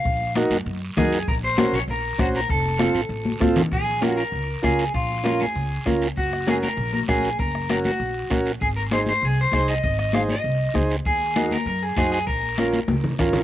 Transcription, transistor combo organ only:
\new Staff \with { instrumentName = "Transistor combo organ" } { \time 4/4 \key bes \minor \tempo 4 = 196 r4 <ees' ges' bes'>8 r4. <ees' ges' bes'>8 r8 | r4 <des' ges' bes'>8 r4. <des' ges' c''>8 r8 | r4 <c' f' a'>8 r4. <c' f' a'>8 r8 | r4 <des' f' bes'>8 r4. <des' f' bes'>8 r8 |
r4 <des' f' bes'>8 r4. <des' f' bes'>8 r8 | r4 <des' ges' bes'>8 r4. <des' ges' bes'>8 r8 | r4 <des' ges' bes'>8 r4. <des' ges' bes'>8 r8 | r4 <ees' aes' c''>8 r4. <ees' aes' c''>8 r8 |
r4 <ees' aes' c''>8 r4. <ees' aes' c''>8 r8 | r4 <ees' ges' bes'>8 r4. <ees' ges' c''>8 r8 | r4 <des' f' bes'>8 r4. <des' f' bes'>8 r8 | }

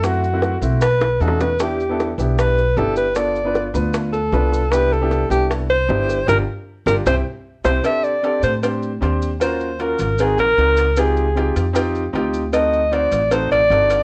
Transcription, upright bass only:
\new Staff \with { instrumentName = "Upright bass" } { \clef bass \time 4/4 \key c \major \tempo 4 = 154 fis,4. b,,4. e,4~ | e,4. b,,4. g,,4~ | g,,4. d,4. c,4~ | c,4. c,4. g,,4 |
g,,8 r4 g,,8 c,8 r4 c,8 | \key c \mixolydian r4. a,4. ees,4~ | ees,4. aes,,4 bes,,8 des,4~ | des,4. f,4. d,4~ |
d,4. a,,4 a,,8 g,,4 | }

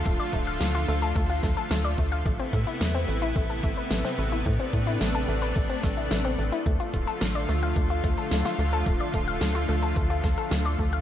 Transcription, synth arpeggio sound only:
\new Staff \with { instrumentName = "Synth arpeggio sound" } { \time 4/4 \key d \dorian \tempo 4 = 109 a16 d''16 a16 f''16 a16 f'16 a16 a'16 a16 f'16 a16 a'16 a16 d''16 a16 f''16 | a16 c'16 a16 e'16 a16 c'16 a16 e'16 a16 a'16 a16 b'16 a16 c'16 a16 e'16 | a16 c'16 a16 e'16 a16 a'16 a16 b'16 a16 c'16 a16 e'16 a16 c'16 a16 e'16 | a16 f'16 a16 a'16 a16 d''16 a16 f''16 a16 f'16 a16 a'16 a16 f'16 a16 a'16 |
a16 d''16 a16 f''16 a16 f'16 a16 a'16 a16 f'16 a16 a'16 a16 d''16 a16 f''16 | }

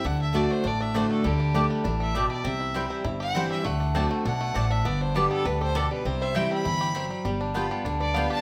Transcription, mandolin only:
\new Staff \with { instrumentName = "Mandolin" } { \time 4/4 \key g \major \tempo 4 = 200 r4 <a fis' d'' a''>8 r4. <a fis' d'' a''>8 r8 | r4 <a g' d'' g''>8 r4. <a g' d'' g''>8 r8 | r4 <c' e' c'' g''>8 r4. <c' e' c'' g''>8 r8 | r4 <c' fis' d'' a''>8 r4. <c' fis' d'' a''>8 r8 |
r4 <b g' d'' a''>8 r4. <b g' d'' a''>8 r8 | r4 <c' e' c'' g''>8 r4. <c' e' c'' g''>8 r8 | r4 <b f' b' g''>8 r4. <b f' b' g''>8 r8 | }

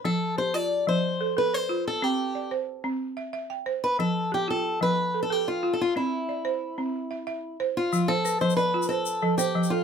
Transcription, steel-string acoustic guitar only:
\new Staff \with { instrumentName = "Steel-string acoustic guitar" } { \time 12/8 \key f \lydian \tempo 4. = 122 a'4 c''8 d''4 c''4. b'8 c''4 a'8 | g'4. r1 b'8 | a'4 g'8 a'4 b'4~ b'16 a'16 g'8 f'8. a'16 f'8 | e'1~ e'4 r8 f'8~ |
f'8 a'4 c''8 b'4 a'4. g'4 f'8 | }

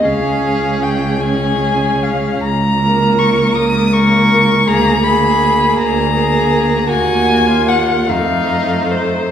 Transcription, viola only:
\new Staff \with { instrumentName = "Viola" } { \time 6/8 \key des \lydian \tempo 4. = 52 des'4. des'4. | \key bes \minor r8 bes4. bes4 | bes8 bes4. bes4 | bes4. a4. | }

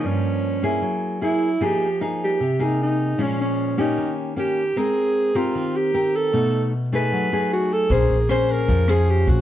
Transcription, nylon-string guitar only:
\new Staff \with { instrumentName = "Nylon-string guitar" } { \time 4/4 \key bes \dorian \tempo 4 = 153 << { <f bes des'>4. <bes e' aes'>4. <bes fes' aes'>8 r8 | <bes ees' aes'>8 r8 <bes ees' aes'>4 r8 <bes ees' aes'>4. | <f aes des'>4. <bes des' g'>4. <bes des' g'>8 r8 | <c' bes'>4. <c' g' bes'>4. <c' g' bes'>4 |
<a dis'>4 r8 <a dis' gis'>4 <a dis' gis'>4. | <des' aes' c''>8 r8 <des' aes' c''>4. <des' aes' c''>4. | } \\ { g,2 ges2 | f2 c2 | bes,2 ees2 | aes2 ees2 |
b,2 fis2 | bes2 f2 | } >> }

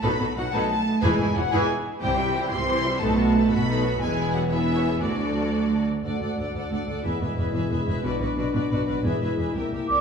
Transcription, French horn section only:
\new Staff \with { instrumentName = "French horn section" } { \time 6/8 \key e \mixolydian \tempo 4. = 120 << { b4 fis8 a8 a4 | gis4 fis8 gis8 r4 | g4. c'4. | a4. b4. |
gis4 fis8 e4. | d2~ d8 r8 | fis'2. | e'2. |
d'2. | e'2~ e'8 d''8 | } \\ { r2. | r2. | r2. | r2. |
r2. | r2. | a2. | gis2. |
fis2. | gis4. bes4 r8 | } >> }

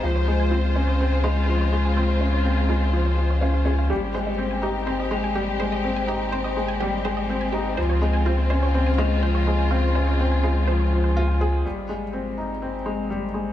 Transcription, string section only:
\new Staff \with { instrumentName = "String section" } { \time 4/4 \key aes \major \tempo 4 = 124 << { <des aes f'>1~ | <des aes f'>1 | g'1~ | g'1 |
<des f'>1~ | <des f'>1 | g'1 | } \\ { c''1~ | c''1 | c'1~ | c'1~ |
c'1~ | c'1 | c'1 | } >> }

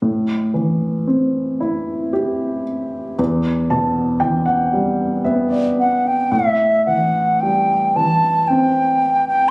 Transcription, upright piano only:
<<
  \new Staff \with { instrumentName = "Upright piano" } { \time 3/4 \key a \dorian \tempo 4 = 57 r2. | r8 a''8 g''16 fis''8. e''16 d''8. | r2. | }
  \new Staff \with { instrumentName = "Upright piano" } { \clef bass \time 3/4 \key a \dorian a,8 e8 c'8 e'8 g'4 | e,8 b,8 e8 g8 b4 | a,8 e8 g8 e8 c'4 | }
>>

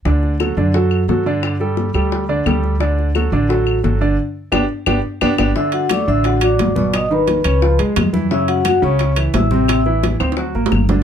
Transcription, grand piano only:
\new Staff \with { instrumentName = "Grand piano" } { \time 4/4 \key d \major \tempo 4 = 174 <d d' d''>4 <fis fis' a'>8 <d d' d''>8 <fis fis' a'>4 <fis fis' a'>8 <d d' d''>8~ | <d d' d''>8 <g g' a'>4 <g g' a'>4 <d d' d''>8 <g g' a'>4 | <d d' d''>4 <fis fis' a'>8 <d d' d''>8 <fis fis' a'>4 <fis fis' a'>8 <d d' d''>8 | r4 <b d' g'>8 r8 <b d' g'>8 r8 <b d' g'>8 <b d' g'>8 |
<d d'>4 <a a'>8 <d d'>4 <fis fis'>4 <b, b>8~ | <b, b>8 <dis dis'>4 <cis' cis''>8 <eis eis'>8 <gis gis'>4 <e e'>8 | <cis cis'>4 <fis fis'>8 <cis cis'>4 <e e'>4 <c c'>8~ | <c c'>8 <e e'>4 <c' c''>8 <fis fis'>8 <ais ais'>4 <d d'>8 | }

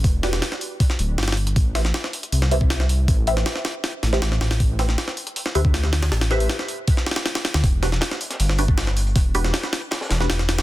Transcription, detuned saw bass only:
\new Staff \with { instrumentName = "Detuned saw bass" } { \clef bass \time 4/4 \key a \dorian \tempo 4 = 158 e,,4 r4. d,,8 g,,4 | a,,4 r4 c,2 | a,,4 r4. a,,8 a,,4 | a,,4 r4. d,4. |
a,,4 r2 r8. d,16 | e,,4 r4 g,,2 | e,,4 r4. e,,8 e,,4 | }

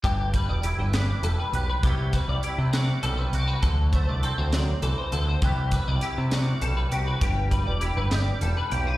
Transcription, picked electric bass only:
\new Staff \with { instrumentName = "Picked electric bass" } { \clef bass \time 6/8 \key g \major \tempo 4. = 67 g,,8. e,,8 g,,8. e,,16 r16 b,,8 | c,8. c,16 r16 c8. b,,8 c,8 | d,8. c,8 d,8. c,16 r16 d,8 | c,8. c,16 r16 c8. b,,8 c,8 |
g,,8. e,,8 g,,8. e,,16 r16 b,,8 | }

